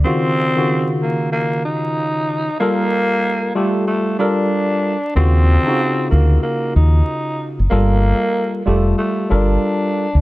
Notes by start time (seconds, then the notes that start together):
0.04 C#3 D#3 C4 F4 F#4
0.56 C#3 D#3 F4 F#4
1.02 A#3
1.32 A#3
1.65 D#4
2.60 G3 A#3 F4 A4 A#4
3.55 G3 A3 F4 G4 A4
3.87 A3
4.19 G3 D4 F4 A4 A#4
5.15 D#2 C#3 D#3 C4 F4 F#4
5.67 C#3 D#4 F4 F#4
6.11 D2 A#3
6.43 A#3
6.76 D#2 D#4
7.59 F#1
7.70 G1 G3 A#3 F4 A4 A#4
8.66 F1 G3 A3 F4 G4 A4
8.98 A3
9.29 G1 G3 D4 F4 A4 A#4
10.15 D2